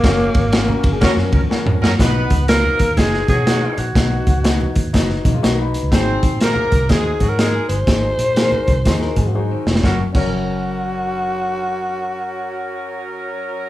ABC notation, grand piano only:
X:1
M:4/4
L:1/8
Q:"Swing" 1/4=122
K:F#
V:1 name="Grand piano"
[CFAcf] z [CFAcf] z [CFAcf] z [CAcf] z | [DFBd] z [B,DFe] z [DFBd] z [DFBd] z | [DFBd] z [DFBd] z [DFBd] z [DFBd] z | [DFG^B] z [DFGB] z [DFGB] z [DFGd] z |
[DFGd] z [DFGA] z [DFGd] z [DFG^B] z | [CFAc] [CFAc]6- [CFAc]- | [CFAc]8 |]
V:2 name="Grand piano" clef=bass
z8 | B,,3 z4 z | B,,3 z4 z | G,,3 z4 z |
G,,3 z4 z | F,, F,,6- F,,- | F,,8 |]